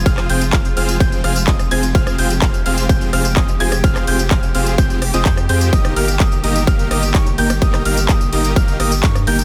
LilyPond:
<<
  \new Staff \with { instrumentName = "Grand piano" } { \time 4/4 \key f \minor \tempo 4 = 127 f'''8 g'''16 r16 f'''16 r16 f'''8 g'''8 f'''16 r16 ees'''16 r16 aes'''16 r16 | f'''8 g'''16 r16 f'''16 r16 f'''8 g'''8 f'''16 r16 ees'''16 r16 aes'''16 r16 | f'''8 g'''16 r16 f'''16 r16 f'''8 g'''8 r16 ees'''16 g'''16 r16 g'''8 | ees'''8 f'''16 r16 ees'''16 r16 ees'''8 f'''8 ees'''16 r16 des'''16 r16 g'''16 r16 |
ees'''8 f'''16 r16 ees'''16 r16 ees'''8 f'''8 ees'''16 r16 des'''16 r16 g'''16 r16 | }
  \new Staff \with { instrumentName = "Supersaw synth" } { \time 4/4 \key f \minor <c' f' aes' c'' f''>8 <c' f' aes' c'' g''>16 r16 <c' f' aes' c'' f''>16 r16 <c' f' aes' c'' f''>8 <c' f' aes' c'' g''>8 <c' f' aes' c'' f''>16 r16 <c' f' aes' c'' ees''>16 r16 <c' f' aes' c'' aes''>16 r16 | <c' f' aes' c'' f''>8 <c' f' aes' c'' g''>16 r16 <c' f' aes' c'' f''>16 r16 <c' f' aes' c'' f''>8 <c' f' aes' c'' g''>8 <c' f' aes' c'' f''>16 r16 <c' f' aes' c'' ees''>16 r16 <c' f' aes' c'' aes''>16 r16 | <c' f' aes' c'' f''>8 <c' f' aes' c'' g''>16 r16 <c' f' aes' c'' f''>16 r16 <c' f' aes' c'' f''>8 <c' f' aes' c'' g''>8 r16 <c' f' aes' c'' ees''>16 <c' f' aes' c'' g''>16 r16 <c' f' aes' c'' g''>8 | <bes ees' g' bes' ees''>8 <bes ees' g' bes' f''>16 r16 <bes ees' g' bes' ees''>16 r16 <bes ees' g' bes' ees''>8 <bes ees' g' bes' f''>8 <bes ees' g' bes' ees''>16 r16 <bes ees' g' bes' des''>16 r16 <bes ees' g' bes' g''>16 r16 |
<bes ees' g' bes' ees''>8 <bes ees' g' bes' f''>16 r16 <bes ees' g' bes' ees''>16 r16 <bes ees' g' bes' ees''>8 <bes ees' g' bes' f''>8 <bes ees' g' bes' ees''>16 r16 <bes ees' g' bes' des''>16 r16 <bes ees' g' bes' g''>16 r16 | }
  \new Staff \with { instrumentName = "String section" } { \clef bass \time 4/4 \key f \minor << { f'1 | g'1~ | g'1~ | g'1~ |
g'1 | } \\ { <c f aes>1~ | <c f aes>1~ | <c f aes>1 | <ees g bes>1~ |
<ees g bes>1 | } >> }
  \new Staff \with { instrumentName = "Sub bass" } { \clef bass \time 4/4 \key f \minor f,,8 f,,8 f,,8 f,,8 f,,8 f,,8 f,,8 f,,8 | f,,8 f,,8 f,,8 f,,8 f,,8 f,,8 f,,8 f,,8 | f,,8 f,,8 f,,8 f,,8 f,,8. f,,16 f,8 f,8 | g,,8 g,,8 g,,8 g,,8 g,,8 g,,8 g,,8 g,,8 |
g,,8 g,,8 g,,8 g,,8 g,,8 g,,8 g,8 g,,8 | }
  \new DrumStaff \with { instrumentName = "Drums" } \drummode { \time 4/4 <hh bd cymr tamb>16 <hc hh ss tamb>16 <hho cymr>16 <hh tamb>16 <hc hh bd cymr tamb>16 <hh tamb>16 <hho cymr>16 <hh tamb>16 <hh bd cymr tamb>16 <hh tamb>16 <hho cymr ss>16 <hh tamb>16 <hc hh bd cymr tamb>16 <hh ss tamb>16 <hho cymr>16 <hh tamb>16 | <hh bd cymr tamb>16 <hh ss tamb>16 <hho cymr>16 <hh tamb>16 <hc hh bd cymr tamb>16 <hh tamb>16 <hho cymr>16 <hh tamb>16 <hh bd cymr tamb>16 <hh tamb>16 <hho cymr ss>16 <hh tamb>16 <hc hh bd cymr tamb>16 <hh tamb>16 <hho cymr>16 <hh ss tamb>16 | <hh bd cymr tamb>16 <hc hh ss tamb>16 <hho cymr>16 <hh tamb>16 <hc hh bd cymr tamb>16 <hh tamb>16 <hho cymr>16 <hh tamb>16 <hh bd cymr tamb>16 <hh tamb>16 <hho cymr ss>16 <hh tamb>16 <hc hh bd cymr tamb>16 <hh ss tamb>16 <hho cymr>16 <hh tamb>16 | <hh bd cymr tamb>16 <hh ss tamb>16 <hho cymr>16 <hh tamb>16 <hc hh bd cymr tamb>16 <hh tamb>16 <hho cymr>16 <hh tamb>16 <hh bd cymr tamb>16 <hh tamb>16 <hho cymr ss>16 <hh tamb>16 <hc hh bd cymr tamb>16 <hh tamb>16 <hho cymr>16 <hh ss tamb>16 |
<hh bd cymr tamb>16 <hc hh ss tamb>16 <hho cymr>16 <hh tamb>16 <hc hh bd cymr tamb>16 <hh tamb>16 <hho cymr>16 <hh tamb>16 <hh bd cymr tamb>16 <hh tamb>16 <hho cymr ss>16 <hh tamb>16 <hc hh bd cymr tamb>16 <hh ss tamb>16 <hho cymr>16 <hh tamb>16 | }
>>